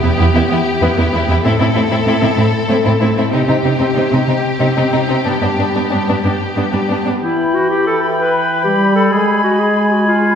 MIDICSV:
0, 0, Header, 1, 9, 480
1, 0, Start_track
1, 0, Key_signature, 1, "minor"
1, 0, Tempo, 313808
1, 2213, Time_signature, 12, 3, 24, 8
1, 6067, Tempo, 325027
1, 10867, Tempo, 316957
1, 15614, End_track
2, 0, Start_track
2, 0, Title_t, "Flute section"
2, 0, Program_c, 0, 73
2, 10862, Note_on_c, 0, 83, 37
2, 15614, Note_off_c, 0, 83, 0
2, 15614, End_track
3, 0, Start_track
3, 0, Title_t, "Oboe"
3, 0, Program_c, 1, 68
3, 10892, Note_on_c, 1, 79, 40
3, 13749, Note_on_c, 1, 80, 40
3, 13771, Note_off_c, 1, 79, 0
3, 15614, Note_off_c, 1, 80, 0
3, 15614, End_track
4, 0, Start_track
4, 0, Title_t, "Clarinet"
4, 0, Program_c, 2, 71
4, 10871, Note_on_c, 2, 64, 53
4, 11358, Note_on_c, 2, 66, 52
4, 11381, Note_off_c, 2, 64, 0
4, 11585, Note_off_c, 2, 66, 0
4, 11594, Note_on_c, 2, 67, 52
4, 11828, Note_off_c, 2, 67, 0
4, 11846, Note_on_c, 2, 69, 42
4, 12059, Note_off_c, 2, 69, 0
4, 12320, Note_on_c, 2, 71, 56
4, 13013, Note_off_c, 2, 71, 0
4, 13022, Note_on_c, 2, 67, 50
4, 13489, Note_off_c, 2, 67, 0
4, 13498, Note_on_c, 2, 69, 59
4, 13744, Note_on_c, 2, 68, 53
4, 13767, Note_off_c, 2, 69, 0
4, 14219, Note_off_c, 2, 68, 0
4, 14228, Note_on_c, 2, 66, 52
4, 14468, Note_on_c, 2, 68, 53
4, 14491, Note_off_c, 2, 66, 0
4, 14957, Note_on_c, 2, 66, 45
4, 14980, Note_off_c, 2, 68, 0
4, 15178, Note_off_c, 2, 66, 0
4, 15187, Note_on_c, 2, 65, 53
4, 15614, Note_off_c, 2, 65, 0
4, 15614, End_track
5, 0, Start_track
5, 0, Title_t, "Violin section"
5, 0, Program_c, 3, 48
5, 0, Note_on_c, 3, 67, 53
5, 2150, Note_off_c, 3, 67, 0
5, 2206, Note_on_c, 3, 69, 50
5, 5097, Note_on_c, 3, 67, 48
5, 5098, Note_off_c, 3, 69, 0
5, 10566, Note_off_c, 3, 67, 0
5, 15614, End_track
6, 0, Start_track
6, 0, Title_t, "Violin section"
6, 0, Program_c, 4, 48
6, 50, Note_on_c, 4, 64, 33
6, 148, Note_off_c, 4, 64, 0
6, 290, Note_on_c, 4, 64, 58
6, 388, Note_off_c, 4, 64, 0
6, 546, Note_on_c, 4, 64, 35
6, 640, Note_off_c, 4, 64, 0
6, 797, Note_on_c, 4, 64, 36
6, 889, Note_off_c, 4, 64, 0
6, 1261, Note_on_c, 4, 64, 43
6, 1356, Note_off_c, 4, 64, 0
6, 1518, Note_on_c, 4, 64, 33
6, 1609, Note_off_c, 4, 64, 0
6, 1756, Note_on_c, 4, 64, 41
6, 1847, Note_off_c, 4, 64, 0
6, 1988, Note_on_c, 4, 64, 39
6, 2081, Note_off_c, 4, 64, 0
6, 2226, Note_on_c, 4, 64, 45
6, 2319, Note_off_c, 4, 64, 0
6, 2453, Note_on_c, 4, 64, 32
6, 2550, Note_off_c, 4, 64, 0
6, 2670, Note_on_c, 4, 64, 39
6, 2771, Note_off_c, 4, 64, 0
6, 2923, Note_on_c, 4, 64, 33
6, 3022, Note_off_c, 4, 64, 0
6, 3164, Note_on_c, 4, 64, 47
6, 3263, Note_off_c, 4, 64, 0
6, 3416, Note_on_c, 4, 64, 30
6, 3512, Note_off_c, 4, 64, 0
6, 3657, Note_on_c, 4, 64, 34
6, 3753, Note_off_c, 4, 64, 0
6, 4127, Note_on_c, 4, 64, 41
6, 4226, Note_off_c, 4, 64, 0
6, 4379, Note_on_c, 4, 64, 37
6, 4476, Note_off_c, 4, 64, 0
6, 4610, Note_on_c, 4, 64, 42
6, 4708, Note_off_c, 4, 64, 0
6, 4852, Note_on_c, 4, 64, 36
6, 4950, Note_off_c, 4, 64, 0
6, 5091, Note_on_c, 4, 63, 46
6, 5190, Note_off_c, 4, 63, 0
6, 5345, Note_on_c, 4, 63, 27
6, 5441, Note_off_c, 4, 63, 0
6, 5580, Note_on_c, 4, 63, 37
6, 5678, Note_off_c, 4, 63, 0
6, 5804, Note_on_c, 4, 63, 30
6, 5905, Note_off_c, 4, 63, 0
6, 6055, Note_on_c, 4, 63, 39
6, 6152, Note_off_c, 4, 63, 0
6, 6309, Note_on_c, 4, 63, 30
6, 6402, Note_off_c, 4, 63, 0
6, 6535, Note_on_c, 4, 63, 28
6, 6631, Note_off_c, 4, 63, 0
6, 7005, Note_on_c, 4, 63, 32
6, 7102, Note_off_c, 4, 63, 0
6, 7246, Note_on_c, 4, 63, 31
6, 7343, Note_off_c, 4, 63, 0
6, 7485, Note_on_c, 4, 63, 35
6, 7582, Note_off_c, 4, 63, 0
6, 7722, Note_on_c, 4, 63, 29
6, 7821, Note_off_c, 4, 63, 0
6, 7967, Note_on_c, 4, 62, 38
6, 8065, Note_off_c, 4, 62, 0
6, 8227, Note_on_c, 4, 62, 25
6, 8322, Note_off_c, 4, 62, 0
6, 8464, Note_on_c, 4, 62, 28
6, 8560, Note_off_c, 4, 62, 0
6, 8703, Note_on_c, 4, 62, 26
6, 8799, Note_off_c, 4, 62, 0
6, 8940, Note_on_c, 4, 62, 40
6, 9038, Note_off_c, 4, 62, 0
6, 9195, Note_on_c, 4, 62, 23
6, 9290, Note_off_c, 4, 62, 0
6, 9442, Note_on_c, 4, 62, 28
6, 9535, Note_off_c, 4, 62, 0
6, 9912, Note_on_c, 4, 62, 31
6, 10007, Note_off_c, 4, 62, 0
6, 10147, Note_on_c, 4, 62, 26
6, 10243, Note_off_c, 4, 62, 0
6, 10387, Note_on_c, 4, 62, 31
6, 10483, Note_off_c, 4, 62, 0
6, 10637, Note_on_c, 4, 62, 28
6, 10731, Note_off_c, 4, 62, 0
6, 15614, End_track
7, 0, Start_track
7, 0, Title_t, "Viola section"
7, 0, Program_c, 5, 48
7, 44, Note_on_c, 5, 59, 42
7, 143, Note_off_c, 5, 59, 0
7, 280, Note_on_c, 5, 59, 56
7, 380, Note_off_c, 5, 59, 0
7, 530, Note_on_c, 5, 59, 40
7, 627, Note_off_c, 5, 59, 0
7, 771, Note_on_c, 5, 59, 47
7, 868, Note_off_c, 5, 59, 0
7, 1249, Note_on_c, 5, 59, 57
7, 1346, Note_off_c, 5, 59, 0
7, 1477, Note_on_c, 5, 59, 45
7, 1576, Note_off_c, 5, 59, 0
7, 1725, Note_on_c, 5, 59, 34
7, 1823, Note_off_c, 5, 59, 0
7, 1964, Note_on_c, 5, 59, 38
7, 2062, Note_off_c, 5, 59, 0
7, 2203, Note_on_c, 5, 60, 51
7, 2301, Note_off_c, 5, 60, 0
7, 2446, Note_on_c, 5, 60, 36
7, 2543, Note_off_c, 5, 60, 0
7, 2677, Note_on_c, 5, 60, 36
7, 2777, Note_off_c, 5, 60, 0
7, 2914, Note_on_c, 5, 60, 36
7, 3015, Note_off_c, 5, 60, 0
7, 3152, Note_on_c, 5, 60, 48
7, 3253, Note_off_c, 5, 60, 0
7, 3397, Note_on_c, 5, 60, 36
7, 3497, Note_off_c, 5, 60, 0
7, 3634, Note_on_c, 5, 60, 35
7, 3735, Note_off_c, 5, 60, 0
7, 4113, Note_on_c, 5, 60, 46
7, 4214, Note_off_c, 5, 60, 0
7, 4356, Note_on_c, 5, 60, 39
7, 4457, Note_off_c, 5, 60, 0
7, 4604, Note_on_c, 5, 60, 37
7, 4704, Note_off_c, 5, 60, 0
7, 4845, Note_on_c, 5, 60, 38
7, 4945, Note_off_c, 5, 60, 0
7, 5064, Note_on_c, 5, 60, 40
7, 5168, Note_off_c, 5, 60, 0
7, 5320, Note_on_c, 5, 60, 29
7, 5422, Note_off_c, 5, 60, 0
7, 5566, Note_on_c, 5, 60, 32
7, 5666, Note_off_c, 5, 60, 0
7, 5812, Note_on_c, 5, 60, 29
7, 5911, Note_off_c, 5, 60, 0
7, 6067, Note_on_c, 5, 60, 48
7, 6161, Note_off_c, 5, 60, 0
7, 6291, Note_on_c, 5, 60, 27
7, 6388, Note_off_c, 5, 60, 0
7, 6534, Note_on_c, 5, 60, 30
7, 6630, Note_off_c, 5, 60, 0
7, 7011, Note_on_c, 5, 60, 42
7, 7107, Note_off_c, 5, 60, 0
7, 7251, Note_on_c, 5, 60, 30
7, 7347, Note_off_c, 5, 60, 0
7, 7489, Note_on_c, 5, 60, 28
7, 7585, Note_off_c, 5, 60, 0
7, 7729, Note_on_c, 5, 60, 29
7, 7826, Note_off_c, 5, 60, 0
7, 7974, Note_on_c, 5, 59, 35
7, 8071, Note_off_c, 5, 59, 0
7, 8213, Note_on_c, 5, 59, 24
7, 8310, Note_off_c, 5, 59, 0
7, 8455, Note_on_c, 5, 59, 26
7, 8552, Note_off_c, 5, 59, 0
7, 8707, Note_on_c, 5, 59, 30
7, 8803, Note_off_c, 5, 59, 0
7, 8942, Note_on_c, 5, 59, 37
7, 9039, Note_off_c, 5, 59, 0
7, 9193, Note_on_c, 5, 59, 26
7, 9288, Note_off_c, 5, 59, 0
7, 9423, Note_on_c, 5, 59, 29
7, 9520, Note_off_c, 5, 59, 0
7, 9911, Note_on_c, 5, 59, 34
7, 10005, Note_off_c, 5, 59, 0
7, 10156, Note_on_c, 5, 59, 29
7, 10249, Note_off_c, 5, 59, 0
7, 10403, Note_on_c, 5, 59, 26
7, 10496, Note_off_c, 5, 59, 0
7, 10642, Note_on_c, 5, 59, 29
7, 10735, Note_off_c, 5, 59, 0
7, 15614, End_track
8, 0, Start_track
8, 0, Title_t, "French horn section"
8, 0, Program_c, 6, 60
8, 10871, Note_on_c, 6, 52, 36
8, 12975, Note_off_c, 6, 52, 0
8, 13055, Note_on_c, 6, 55, 41
8, 13737, Note_on_c, 6, 56, 42
8, 13761, Note_off_c, 6, 55, 0
8, 15614, Note_off_c, 6, 56, 0
8, 15614, End_track
9, 0, Start_track
9, 0, Title_t, "Cello section"
9, 0, Program_c, 7, 48
9, 50, Note_on_c, 7, 40, 39
9, 148, Note_off_c, 7, 40, 0
9, 292, Note_on_c, 7, 40, 52
9, 390, Note_off_c, 7, 40, 0
9, 528, Note_on_c, 7, 40, 40
9, 626, Note_off_c, 7, 40, 0
9, 771, Note_on_c, 7, 40, 37
9, 868, Note_off_c, 7, 40, 0
9, 1251, Note_on_c, 7, 40, 55
9, 1348, Note_off_c, 7, 40, 0
9, 1492, Note_on_c, 7, 40, 39
9, 1588, Note_off_c, 7, 40, 0
9, 1723, Note_on_c, 7, 40, 39
9, 1821, Note_off_c, 7, 40, 0
9, 1969, Note_on_c, 7, 40, 42
9, 2065, Note_off_c, 7, 40, 0
9, 2209, Note_on_c, 7, 45, 51
9, 2306, Note_off_c, 7, 45, 0
9, 2448, Note_on_c, 7, 45, 37
9, 2546, Note_off_c, 7, 45, 0
9, 2676, Note_on_c, 7, 45, 35
9, 2776, Note_off_c, 7, 45, 0
9, 2917, Note_on_c, 7, 45, 37
9, 3017, Note_off_c, 7, 45, 0
9, 3150, Note_on_c, 7, 45, 53
9, 3251, Note_off_c, 7, 45, 0
9, 3393, Note_on_c, 7, 45, 39
9, 3494, Note_off_c, 7, 45, 0
9, 3644, Note_on_c, 7, 45, 36
9, 3742, Note_off_c, 7, 45, 0
9, 4112, Note_on_c, 7, 45, 53
9, 4214, Note_off_c, 7, 45, 0
9, 4355, Note_on_c, 7, 45, 35
9, 4456, Note_off_c, 7, 45, 0
9, 4598, Note_on_c, 7, 45, 36
9, 4699, Note_off_c, 7, 45, 0
9, 4842, Note_on_c, 7, 45, 36
9, 4942, Note_off_c, 7, 45, 0
9, 5079, Note_on_c, 7, 48, 46
9, 5180, Note_off_c, 7, 48, 0
9, 5321, Note_on_c, 7, 48, 35
9, 5422, Note_off_c, 7, 48, 0
9, 5564, Note_on_c, 7, 48, 32
9, 5664, Note_off_c, 7, 48, 0
9, 5802, Note_on_c, 7, 48, 36
9, 5904, Note_off_c, 7, 48, 0
9, 6052, Note_on_c, 7, 48, 42
9, 6150, Note_off_c, 7, 48, 0
9, 6292, Note_on_c, 7, 48, 34
9, 6389, Note_off_c, 7, 48, 0
9, 6525, Note_on_c, 7, 48, 27
9, 6622, Note_off_c, 7, 48, 0
9, 7002, Note_on_c, 7, 48, 41
9, 7100, Note_off_c, 7, 48, 0
9, 7254, Note_on_c, 7, 48, 25
9, 7349, Note_off_c, 7, 48, 0
9, 7494, Note_on_c, 7, 48, 27
9, 7590, Note_off_c, 7, 48, 0
9, 7740, Note_on_c, 7, 48, 31
9, 7835, Note_off_c, 7, 48, 0
9, 7970, Note_on_c, 7, 43, 36
9, 8068, Note_off_c, 7, 43, 0
9, 8222, Note_on_c, 7, 43, 29
9, 8318, Note_off_c, 7, 43, 0
9, 8456, Note_on_c, 7, 43, 30
9, 8553, Note_off_c, 7, 43, 0
9, 8707, Note_on_c, 7, 43, 27
9, 8803, Note_off_c, 7, 43, 0
9, 8959, Note_on_c, 7, 43, 40
9, 9053, Note_off_c, 7, 43, 0
9, 9208, Note_on_c, 7, 43, 29
9, 9301, Note_off_c, 7, 43, 0
9, 9440, Note_on_c, 7, 43, 23
9, 9533, Note_off_c, 7, 43, 0
9, 9911, Note_on_c, 7, 43, 44
9, 10005, Note_off_c, 7, 43, 0
9, 10149, Note_on_c, 7, 43, 28
9, 10245, Note_off_c, 7, 43, 0
9, 10382, Note_on_c, 7, 43, 27
9, 10480, Note_off_c, 7, 43, 0
9, 10620, Note_on_c, 7, 43, 28
9, 10717, Note_off_c, 7, 43, 0
9, 15614, End_track
0, 0, End_of_file